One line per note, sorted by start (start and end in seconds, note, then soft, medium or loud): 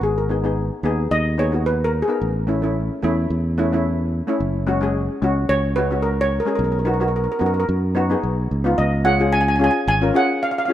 0.01 0.69 G#1 medium
0.01 0.16 G#4 medium
0.18 0.43 A#4 medium
0.29 0.38 B3 medium
0.29 0.39 D#4 medium
0.29 0.39 G#4 medium
0.44 0.68 B3 medium
0.44 0.69 D#4 medium
0.44 0.69 G#4 medium
0.83 1.06 D#2 medium
0.83 1.17 B3 medium
0.83 1.18 D#4 medium
0.83 1.18 G#4 loud
1.11 2.01 D#2 loud
1.11 1.37 D#5 loud
1.38 1.47 B3 medium
1.38 1.47 D#4 medium
1.38 1.48 G#4 medium
1.38 1.64 C#5 medium
1.52 1.85 B3 medium
1.52 1.86 D#4 medium
1.52 1.86 F#4 medium
1.66 1.83 B4 medium
1.84 1.93 A#4 medium
2.02 3.35 G#4 medium
2.08 2.21 B3 medium
2.08 2.21 D#4 medium
2.08 2.21 A#4 medium
2.21 2.89 A1 medium
2.47 2.56 A3 medium
2.47 2.57 C#4 medium
2.47 2.57 E4 medium
2.62 2.87 A3 medium
2.62 2.87 C#4 medium
2.62 2.88 E4 medium
3.02 3.26 E2 medium
3.02 3.36 A3 medium
3.02 3.36 C#4 medium
3.02 3.37 E4 loud
3.30 4.20 E2 loud
3.58 3.66 A3 medium
3.58 3.67 C#4 medium
3.58 3.67 E4 medium
3.73 4.05 A3 medium
3.73 4.05 C#4 medium
3.73 4.06 E4 medium
4.27 4.40 A3 medium
4.27 4.40 C#4 medium
4.27 4.41 E4 medium
4.40 5.08 F#1 medium
4.67 4.76 G#3 medium
4.67 4.76 C#4 medium
4.67 4.77 F#4 loud
4.81 5.06 G#3 medium
4.81 5.06 C#4 medium
4.81 5.07 G#4 loud
5.22 5.44 C#2 medium
5.22 5.55 G#3 medium
5.22 5.56 C#4 medium
5.22 5.56 F#4 loud
5.49 6.39 C#2 medium
5.49 5.75 C#5 loud
5.76 5.85 G#3 medium
5.76 5.86 C#4 medium
5.76 5.86 F#4 medium
5.76 6.05 B4 medium
5.91 6.24 G#3 medium
5.91 6.24 C#4 medium
5.91 6.24 F#4 medium
6.02 6.22 A#4 medium
6.21 6.39 C#5 loud
6.40 6.47 A#4 medium
6.45 6.58 G#3 medium
6.45 6.59 C#4 medium
6.45 6.59 G#4 medium
6.45 6.54 A#4 medium
6.55 7.26 B1 loud
6.55 6.63 A#4 medium
6.64 6.71 A#4 medium
6.72 6.78 A#4 medium
6.79 6.84 A#4 medium
6.85 6.94 B3 medium
6.85 6.95 D#4 medium
6.85 6.95 F#4 medium
6.85 6.92 A#4 medium
6.94 7.00 A#4 soft
7.00 7.25 B3 medium
7.00 7.25 D#4 medium
7.00 7.26 F#4 medium
7.00 7.07 A#4 medium
7.08 7.15 A#4 medium
7.16 7.23 A#4 medium
7.24 7.30 A#4 medium
7.32 7.38 A#4 medium
7.39 7.64 F#2 medium
7.39 7.74 B3 medium
7.39 7.74 D#4 medium
7.39 7.75 F#4 medium
7.39 7.45 A#4 medium
7.46 7.53 A#4 medium
7.54 7.58 A#4 medium
7.60 7.67 A#4 medium
7.69 8.14 F#2 loud
7.95 8.04 B3 medium
7.95 8.05 D#4 medium
7.95 8.05 F#4 loud
8.10 8.43 B3 medium
8.10 8.43 D#4 medium
8.10 8.44 G#4 medium
8.23 8.48 B1 medium
8.51 8.76 C#2 medium
8.64 8.78 B3 medium
8.64 8.78 D#4 medium
8.64 8.78 F4 loud
8.78 9.68 C#2 loud
8.78 9.03 D#5 medium
9.04 9.14 C#4 medium
9.04 9.14 F4 medium
9.04 9.15 G#4 medium
9.04 9.33 F#5 loud
9.19 9.44 C#4 medium
9.19 9.45 F4 medium
9.19 9.45 G#4 medium
9.33 9.40 G#5 loud
9.41 9.47 G#5 medium
9.48 9.55 G#5 medium
9.56 9.85 C#4 medium
9.56 9.63 G#5 medium
9.60 9.85 F4 medium
9.60 9.86 G#4 medium
9.60 9.70 G#5 medium
9.71 9.79 G#5 medium
9.88 10.10 G#1 loud
9.88 10.16 G#5 loud
10.01 10.09 C#4 medium
10.01 10.10 F4 medium
10.01 10.10 A#4 medium
10.14 10.48 C#4 medium
10.14 10.48 F4 medium
10.14 10.49 G#4 medium
10.14 10.28 F#5 medium
10.43 10.50 F5 medium
10.51 10.57 F5 medium
10.58 10.64 F5 medium
10.65 10.73 C#4 medium
10.65 10.73 F4 medium
10.65 10.72 F5 medium
10.70 10.73 G#4 medium